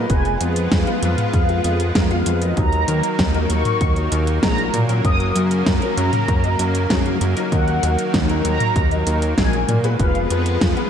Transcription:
Already playing: grand piano G#3 B3 F4 B4
0.10 analog synth bass F1, analog synth pad F3 G#3 B3, analog polysynth G#5, kick, closed hi-hat
0.25 closed hi-hat
0.41 analog synth bass F2, grand piano G#3 B3 F4 B4, closed hi-hat
0.56 closed hi-hat
0.71 analog synth bass F2, analog polysynth F5, kick, snare, closed hi-hat
0.87 grand piano G#3 B3 F4 B4, closed hi-hat
1.03 analog synth bass F2, closed hi-hat
1.18 closed hi-hat, mid tom
1.33 analog synth bass F2, kick, closed hi-hat
1.49 grand piano G#3 B3 F4 F5, closed hi-hat
1.64 analog synth bass F2, closed hi-hat
1.80 closed hi-hat
1.95 analog synth bass F2, grand piano G#3 B3 F4 A#4, kick, snare, closed hi-hat
2.11 grand piano G#3 B3 F4 F5, closed hi-hat
2.26 analog synth bass F2, closed hi-hat
2.42 grand piano F#3 A#3 D#4 D#5, closed hi-hat
2.57 analog synth bass D#2, analog synth pad D#3 F#3 A#3, analog polysynth A#5, kick, closed hi-hat
2.73 closed hi-hat
2.88 analog synth bass D#2, grand piano F#3 A#3 D#4 A#4, closed hi-hat
3.03 closed hi-hat
3.19 analog synth bass D#2, kick, snare, closed hi-hat
3.34 grand piano F#3 A#3 D#4 A#4, closed hi-hat
3.50 analog synth bass D#2, analog polysynth C#6, closed hi-hat
3.65 closed hi-hat, mid tom
3.81 analog synth bass D#2, kick, closed hi-hat
3.96 grand piano F#3 A#3 D#4 D#5, closed hi-hat
4.12 analog synth bass D#2, closed hi-hat
4.27 closed hi-hat
4.43 analog synth bass A#1, grand piano F#3 A#3 D#4 G#4, analog polysynth A#5, kick, snare, closed hi-hat
4.58 closed hi-hat
4.74 analog synth bass A#2, closed hi-hat, mid tom
4.89 grand piano F#3 A#3 C#4 A#4, closed hi-hat
5.05 analog synth bass F#1, analog synth pad C#3, analog polysynth D#6, kick, closed hi-hat
5.20 closed hi-hat
5.36 analog synth bass F#2, grand piano F#3 A#3 C#4 A#4, closed hi-hat
5.51 closed hi-hat
5.66 analog synth bass F#2, analog polysynth A#5, kick, snare, closed hi-hat
5.82 grand piano F#3 A#3 C#4 A#4, closed hi-hat
5.97 analog synth bass F#2, closed hi-hat
6.13 closed hi-hat, mid tom
6.28 analog synth bass F#2, kick, closed hi-hat
6.44 grand piano F#3 A#3 C#4 D#5, closed hi-hat
6.59 analog synth bass F#2, closed hi-hat
6.75 closed hi-hat
6.90 analog synth bass F#2, grand piano F#3 A#3 C#4 G#4, kick, snare, closed hi-hat
7.06 closed hi-hat
7.21 analog synth bass F#2, closed hi-hat
7.37 grand piano F#3 A#3 D#4 A#4, closed hi-hat
7.52 analog synth bass D#2, analog synth pad D#3, analog polysynth F#5, kick, closed hi-hat
7.68 closed hi-hat
7.83 analog synth bass D#2, grand piano F#3 A#3 D#4 A#4, closed hi-hat
7.99 closed hi-hat
8.14 analog synth bass D#2, kick, snare, closed hi-hat
8.29 grand piano F#3 A#3 D#4 A#4, closed hi-hat
8.45 analog synth bass D#2, analog polysynth A#5, closed hi-hat
8.60 closed hi-hat, mid tom
8.76 analog synth bass D#2, kick, closed hi-hat
8.91 grand piano F#3 A#3 D#4 D#5, closed hi-hat
9.07 analog synth bass D#2, closed hi-hat
9.22 closed hi-hat
9.38 analog synth bass A#1, grand piano F#3 A#3 D#4 G#4, analog polysynth G#5, kick, snare, closed hi-hat
9.53 closed hi-hat
9.69 analog synth bass A#2, closed hi-hat, mid tom
9.84 grand piano G#3 B3 F4 B4, closed hi-hat
9.99 analog synth bass F1, analog synth pad F3 G#3 B3, analog polysynth F5, kick, closed hi-hat
10.15 closed hi-hat
10.30 analog synth bass F2, grand piano G#3 B3 F4 B4, closed hi-hat
10.46 closed hi-hat
10.61 analog synth bass F2, analog polysynth F5, kick, snare, closed hi-hat
10.77 grand piano G#3 B3 F4 B4, closed hi-hat

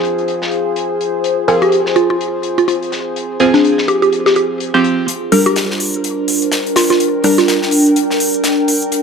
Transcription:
Already playing: synth stab F3 C4 G#4, synth pluck F4, ambient pad F4 G#4 C5
0.05 closed hi-hat
0.18 closed hi-hat
0.28 closed hi-hat
0.42 snare
0.51 closed hi-hat
0.76 closed hi-hat
1.01 closed hi-hat
1.24 closed hi-hat
1.48 synth stab F3 C4 G#4, synth pluck A#4, closed hi-hat
1.62 synth pluck G4, closed hi-hat
1.72 closed hi-hat
1.86 snare
1.96 synth pluck F4, closed hi-hat
2.10 synth pluck F4
2.21 closed hi-hat
2.43 closed hi-hat
2.58 synth pluck F4, closed hi-hat
2.68 synth pluck F4, closed hi-hat
2.82 closed hi-hat
2.92 snare, closed hi-hat
3.16 closed hi-hat
3.40 synth stab F3 C4 G#4, closed hi-hat
3.54 synth pluck D4, snare
3.64 closed hi-hat
3.78 snare
3.88 synth pluck G4, closed hi-hat
4.02 synth pluck G4, closed hi-hat
4.12 closed hi-hat
4.26 synth pluck G4, snare
4.36 synth pluck G4, closed hi-hat
4.60 closed hi-hat
4.74 synth stab F3 C4 G4
4.84 closed hi-hat
5.08 ambient pad D4, closed hi-hat
5.32 synth stab G3 D4 A#4, synth pluck A#4, ambient pad A#4, closed hi-hat, open hi-hat
5.46 synth pluck G4, closed hi-hat
5.56 snare, closed hi-hat
5.71 snare
5.80 closed hi-hat, open hi-hat
5.94 closed hi-hat
6.04 closed hi-hat
6.28 closed hi-hat, open hi-hat
6.34 ambient pad G5
6.42 closed hi-hat
6.52 snare, closed hi-hat
6.66 closed hi-hat
6.76 synth pluck F4, snare, closed hi-hat, open hi-hat
6.90 synth pluck F4, snare, closed hi-hat
7.00 closed hi-hat
7.24 synth stab G3 D4 A#4, synth pluck D4, closed hi-hat, open hi-hat
7.38 synth pluck F4, snare, closed hi-hat
7.48 snare, closed hi-hat
7.62 snare
7.71 closed hi-hat, open hi-hat
7.86 closed hi-hat
7.96 closed hi-hat
8.11 snare
8.20 closed hi-hat, open hi-hat
8.34 closed hi-hat
8.44 snare, closed hi-hat
8.68 closed hi-hat, open hi-hat
8.82 closed hi-hat
8.92 closed hi-hat

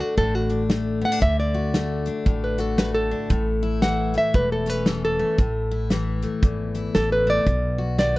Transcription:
Already playing: steel-string acoustic guitar D3 A3
0.00 steel-string acoustic guitar D4, nylon-string guitar F#4
0.17 upright bass A1, steel-string acoustic guitar A2, nylon-string guitar A4, kick, closed hi-hat
0.35 nylon-string guitar F#4
0.50 steel-string acoustic guitar D4, closed hi-hat
0.70 steel-string acoustic guitar A3, snare, closed hi-hat
1.01 steel-string acoustic guitar B3, nylon-string guitar F#5
1.12 steel-string acoustic guitar D4
1.22 upright bass D2, steel-string acoustic guitar D3, nylon-string guitar E5, kick, closed hi-hat
1.40 nylon-string guitar D5
1.54 steel-string acoustic guitar F#4
1.74 steel-string acoustic guitar A3, snare, closed hi-hat
2.06 steel-string acoustic guitar D4, closed hi-hat
2.26 upright bass A1, steel-string acoustic guitar A2, kick, closed hi-hat
2.44 nylon-string guitar B4
2.58 steel-string acoustic guitar F#4, nylon-string guitar A4, closed hi-hat
2.78 steel-string acoustic guitar A3, nylon-string guitar B4, snare, closed hi-hat
2.94 nylon-string guitar A4
3.11 steel-string acoustic guitar D4
3.30 upright bass A1, steel-string acoustic guitar A2, kick, closed hi-hat
3.63 steel-string acoustic guitar E4
3.82 steel-string acoustic guitar E3, nylon-string guitar F#5, snare, closed hi-hat
4.14 steel-string acoustic guitar A3, nylon-string guitar E5, closed hi-hat
4.34 upright bass E1, steel-string acoustic guitar E2, nylon-string guitar B4, kick, closed hi-hat
4.52 nylon-string guitar A4
4.66 steel-string acoustic guitar C#4, nylon-string guitar B4, closed hi-hat
4.86 steel-string acoustic guitar E3, nylon-string guitar A4, snare, closed hi-hat
5.05 nylon-string guitar A4
5.19 steel-string acoustic guitar A3
5.38 upright bass A1, steel-string acoustic guitar A2, kick, closed hi-hat
5.71 steel-string acoustic guitar E4
5.90 steel-string acoustic guitar E3, snare, closed hi-hat
6.22 steel-string acoustic guitar A3, closed hi-hat
6.43 upright bass G#1, steel-string acoustic guitar E2, kick, closed hi-hat
6.75 steel-string acoustic guitar E4, closed hi-hat
6.95 upright bass A1, steel-string acoustic guitar E3, nylon-string guitar A4, snare, closed hi-hat
7.12 nylon-string guitar B4
7.27 steel-string acoustic guitar A3, nylon-string guitar D5
7.46 upright bass B1, steel-string acoustic guitar B2, kick, closed hi-hat
7.78 steel-string acoustic guitar F#4
7.98 steel-string acoustic guitar D#3, nylon-string guitar D5, snare, closed hi-hat

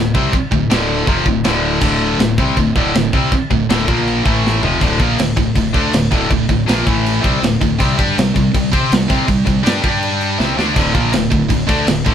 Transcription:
Already playing: fingered electric bass D1, distorted electric guitar D2 A2
0.14 fingered electric bass C2, distorted electric guitar C3 G3 C4, kick
0.32 muted distorted electric guitar stroke, muted fingered electric bass stroke, kick, china
0.52 fingered electric bass D1, distorted electric guitar D2 A2, kick
0.70 fingered electric bass D1, distorted electric guitar D2 A2 D3, snare, china
1.07 fingered electric bass F1, distorted electric guitar F2 C3 F3, kick, china
1.26 fingered electric bass D1, distorted electric guitar D2 A2, kick
1.44 fingered electric bass D1, distorted electric guitar D2 A2 D3, snare, china
1.81 fingered electric bass D1, distorted electric guitar D2 A2 D3, kick, crash, china
2.19 fingered electric bass D1, distorted electric guitar D2 A2, snare, china
2.38 fingered electric bass C2, distorted electric guitar C3 G3 C4, kick
2.57 fingered electric bass D1, distorted electric guitar D2 A2, kick, china
2.76 fingered electric bass D1, distorted electric guitar D2 A2 D3, kick
2.94 fingered electric bass D1, distorted electric guitar D2 A2, snare, china
3.13 fingered electric bass C2, distorted electric guitar C3 G3 C4, kick
3.32 muted fingered electric bass stroke, muted distorted electric guitar stroke, kick, china
3.50 fingered electric bass D1, distorted electric guitar D2 A2, kick
3.68 fingered electric bass D1, distorted electric guitar D2 A2 D3, snare, china
3.87 fingered electric bass A#1, distorted electric guitar A#2 F3 A#3, kick
4.07 china
4.24 fingered electric bass A1, distorted electric guitar A2 E3 A3, kick
4.46 snare
4.62 fingered electric bass F1, distorted electric guitar F2 C3 F3, floor tom
4.80 fingered electric bass D1, distorted electric guitar D2 A2 D3, kick, crash
4.99 fingered electric bass A#1, distorted electric guitar A#2 F3 A#3, kick, crash
5.19 fingered electric bass D1, distorted electric guitar D2 A2, snare, crash
5.36 fingered electric bass D1, distorted electric guitar D2 A2, kick, crash
5.55 fingered electric bass D1, distorted electric guitar D2 A2, kick, crash
5.73 fingered electric bass D2, distorted electric guitar D3 A3 D4, kick, crash
5.92 fingered electric bass D1, distorted electric guitar D2 A2, snare, crash
6.11 fingered electric bass D1, distorted electric guitar D2 A2 D3, kick, crash
6.30 fingered electric bass D1, distorted electric guitar D2 A2, kick, crash
6.49 fingered electric bass D1, distorted electric guitar D2 A2, kick, crash
6.66 fingered electric bass A#1, distorted electric guitar A#2 F3 A#3, snare, crash
6.85 fingered electric bass A1, distorted electric guitar A2 E3 A3, kick, crash
7.06 crash
7.21 fingered electric bass C2, distorted electric guitar C3 G3 C4, kick
7.25 crash
7.40 fingered electric bass D1, distorted electric guitar D2 A2, crash
7.44 snare
7.60 fingered electric bass D1, distorted electric guitar D2 A2, kick, crash
7.78 fingered electric bass C2, distorted electric guitar C3 G3 C4, kick, crash
7.97 fingered electric bass G2, distorted electric guitar G3 D4 G4, kick, crash
8.15 fingered electric bass C2, distorted electric guitar C3 G3, snare, crash
8.34 fingered electric bass C2, distorted electric guitar C3 G3, kick, crash
8.54 fingered electric bass C2, distorted electric guitar C3 G3, kick, crash
8.73 fingered electric bass C3, distorted electric guitar C4 G4 C5, kick, crash
8.91 fingered electric bass C2, distorted electric guitar C3 G3, snare, crash
9.08 fingered electric bass C2, distorted electric guitar C3 G3 C4, kick, crash
9.27 fingered electric bass C2, distorted electric guitar C3 G3, kick, crash
9.45 fingered electric bass C2, distorted electric guitar C3 G3, kick, crash
9.63 fingered electric bass G2, distorted electric guitar G3 D4 G4, snare, crash
9.82 fingered electric bass G2, distorted electric guitar G3 D4 G4, kick, crash
10.03 crash
10.21 crash
10.39 fingered electric bass C2, distorted electric guitar C3 G3 C4, snare
10.58 fingered electric bass D2, distorted electric guitar D3 A3 D4, snare
10.75 fingered electric bass D1, distorted electric guitar D2 A2 D3, kick, crash
10.93 fingered electric bass A#1, distorted electric guitar A#2 F3 A#3, kick, crash
11.12 fingered electric bass D1, distorted electric guitar D2 A2, snare, crash
11.31 fingered electric bass D1, distorted electric guitar D2 A2, kick, crash
11.49 fingered electric bass D1, distorted electric guitar D2 A2, kick, crash
11.67 fingered electric bass D2, distorted electric guitar D3 A3 D4, kick, crash
11.87 fingered electric bass D1, distorted electric guitar D2 A2, snare, crash
12.06 fingered electric bass D1, distorted electric guitar D2 A2 D3, kick, crash

